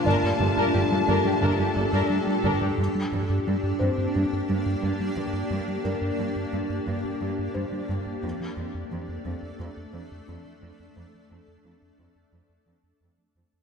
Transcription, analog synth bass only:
\new Staff \with { instrumentName = "Analog synth bass" } { \clef bass \time 4/4 \key g \minor \tempo 4 = 88 g,16 g,16 g,16 g,16 g,16 g16 g,16 g16 g,16 g16 g,16 g,16 g16 g16 g,16 g,16 | g,16 g16 g,16 g,16 g16 g,16 g,16 g,16 g,16 g,16 g16 g,16 g,16 g16 g,16 g,16 | g,16 g16 g,16 g,16 g16 g,16 g,16 g,16 g,16 g,16 g16 g,16 g,16 g16 g,16 g,16 | f,16 f16 f,16 f,16 f16 f,16 f,16 f,16 f,16 f,16 f16 f,16 f,16 f16 f,16 f,16 |
f,16 f16 f,16 f,16 f16 f,16 f,16 f,16 f,16 f,16 f16 f,16 f,16 f16 f,16 f,16 | }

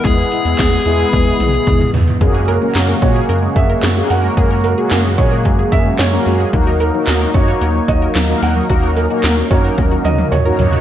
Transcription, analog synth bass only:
\new Staff \with { instrumentName = "Analog synth bass" } { \clef bass \time 4/4 \key fis \mixolydian \tempo 4 = 111 e,8 r16 e,16 e,8 e,8 e,8 b,,8 e,8 e,8 | fis,4 fis,8 ais,8 fis,8 fis,8 fis,8 fis,8 | fis,4 fis,8 ais,8 fis,8 fis,8 fis,8 fis,8 | dis,4 dis,8 fis,8 dis,8 dis,8 dis,8 dis,8 |
dis,4 dis,8 fis,8 dis,8 dis,8 dis,8 dis,8 | }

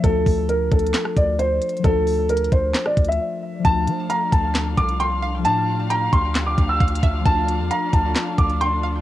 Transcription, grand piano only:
\new Staff \with { instrumentName = "Grand piano" } { \time 4/4 \key d \minor \tempo 4 = 133 a'4 bes'8 a'4 d''8 c''4 | a'4 bes'8 c''8. d''8 e''4~ e''16 | a''4 bes''8 a''4 d'''8 c'''4 | a''4 bes''8 c'''8. d'''8 e'''4~ e'''16 |
a''4 bes''8 a''4 d'''8 c'''4 | }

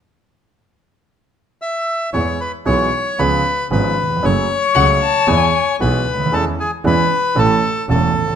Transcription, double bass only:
\new Staff \with { instrumentName = "Double bass" } { \clef bass \time 4/4 \key e \major \tempo 4 = 115 r1 | e,8 r8 b,,8 r8 cis,8 r8 gis,,8 r8 | fis,,8 r8 cis,8 r8 e,8 r8 b,,8 d,8 | e,8 r8 e,8 r8 a,,8 r8 e,,8 a,,8 | }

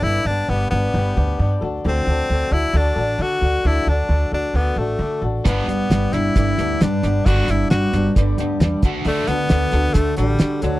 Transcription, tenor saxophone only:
\new Staff \with { instrumentName = "Tenor saxophone" } { \time 4/4 \key g \major \tempo 4 = 133 e'8 d'8 b8 b2 r8 | c'4. e'8 d'4 fis'4 | e'8 d'4 d'8 b8 a4 r8 | b4. e'4. d'4 |
fis'8 e'8 fis'4 r2 | a8 b4. a8 g4 fis8 | }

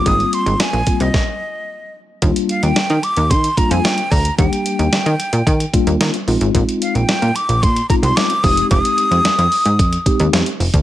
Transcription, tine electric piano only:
\new Staff \with { instrumentName = "Tine electric piano" } { \time 4/4 \key ees \major \tempo 4 = 111 <g bes c' f'>4 r8 <g bes c' f'>8 r2 | <g bes d' f'>4 r4. <g bes d' f'>8. r8. | <g bes d' g'>4 r4. <g bes d' f'>8. r16 <aes c' ees' f'>8~ | <aes c' ees' f'>4 r4. <aes c' ees' f'>8. r16 <aes c' ees' g'>8~ |
<aes c' ees' g'>4 r4. <aes c' ees' g'>8. r8. | }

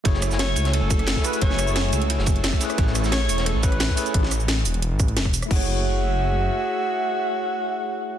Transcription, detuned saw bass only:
\new Staff \with { instrumentName = "Detuned saw bass" } { \clef bass \time 4/4 \key fis \minor \tempo 4 = 176 fis,,8. fis,,8. cis,8. fis,,8. fis,,16 r8. | fis,,8. fis,,8. cis,8. fis,,8. fis,,16 r8. | a,,8. a,,8. e,,8. a,,8. a,,16 r8. | a,,8. a,,8. e,,8. a,,8. e,,8. r16 |
fis,,2. r4 | r1 | }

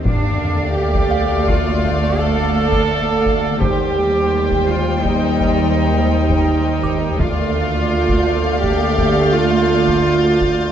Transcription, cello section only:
\new Staff \with { instrumentName = "Cello section" } { \time 5/4 \key d \phrygian \tempo 4 = 84 d'4 g'4 f'4 a'2 | g'4. f'8 ees'2. | f'2 g'4 f'2 | }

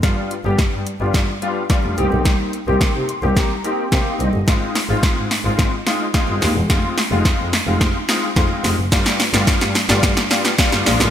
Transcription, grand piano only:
\new Staff \with { instrumentName = "Grand piano" } { \time 4/4 \key g \phrygian \tempo 4 = 108 << { r1 | r4. c'''8 bes''8 g''8 f''8 ees''8 | r1 | r1 |
r1 | } \\ { <g b d' f'>8 r16 <g b d' g'>8. r16 <g b d' f'>8 r16 <g b d' f'>16 r16 <g b d' f'>8 <bes c' ees' g'>8~ | <bes c' ees' g'>8 r16 <bes c' ees' g'>8. r16 <bes c' ees' g'>8 r16 <bes c' ees' g'>16 r16 <bes c' ees' g'>8. r16 | <aes c' ees' f'>8 r16 <aes c' ees' f'>8. r16 <aes c' ees' f'>8 r16 <aes c' ees' f'>16 r16 <aes c' ees' f'>8. r16 | <aes c' ees' f'>8 r16 <aes c' ees' f'>8. r16 <aes c' ees' f'>8 r16 <aes c' ees' f'>16 r16 <aes c' ees' f'>8. r16 |
<g b d' f'>8 r16 <g b d' f'>8. r16 <g b d' f'>8 r16 <g b d' f'>16 r16 <g b d' f'>8 <aes bes d' f'>8 | } >> }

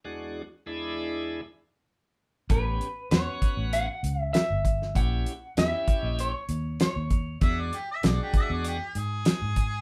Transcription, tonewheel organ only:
\new Staff \with { instrumentName = "Tonewheel organ" } { \time 4/4 \key e \mixolydian \tempo 4 = 98 <e, gis d' fis'>8 r8 <e, gis d' e'>4 r2 | <b cis' g'>8 r8 <b cis' fis'>4 r2 | <cis' e' g'>8 r8 <cis' e' g'>4 r2 | <gis d' fis'>8 r8 <gis d' fis'>4 r2 | }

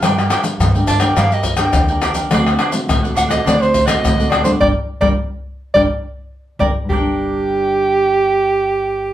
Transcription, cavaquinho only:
\new Staff \with { instrumentName = "Cavaquinho" } { \time 4/4 \key g \minor \tempo 4 = 105 <d' bes' d'' g''>16 <bes' d'' g''>16 <d' bes' d'' g''>16 r8 <bes' d'' g''>16 <d' bes' d'' g''>16 <bes' d'' g''>16 <d' bes' d'' g''>16 <bes' d'' g''>16 r16 <bes' d'' g''>8 <bes' d'' g''>16 <d' bes' d'' g''>16 <bes' d'' g''>16 | <d' c'' d'' fis''>16 <c'' d'' fis''>16 <d' c'' d'' fis''>16 r8 <c'' d'' fis''>16 <d' c'' d'' fis''>16 <c'' d'' fis''>16 <d' c'' d'' fis''>16 <c'' d'' fis''>16 r16 <c'' d'' fis''>8 <c'' d'' fis''>16 <d' c'' d'' fis''>16 <c'' d'' fis''>16 | <bes' d'' g''>16 r8 <bes' d'' g''>16 r4 <bes' d'' g''>16 r4 r16 <bes' d'' g''>16 r16 | <d' bes' d'' g''>1 | }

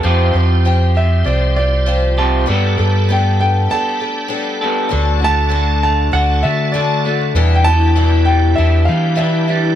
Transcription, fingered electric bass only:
\new Staff \with { instrumentName = "Fingered electric bass" } { \clef bass \time 4/4 \key d \dorian \tempo 4 = 98 f,8 f,4. c,2 | g,8 g,4. r2 | d,2 d,8 d4. | e,2 e,8 e4. | }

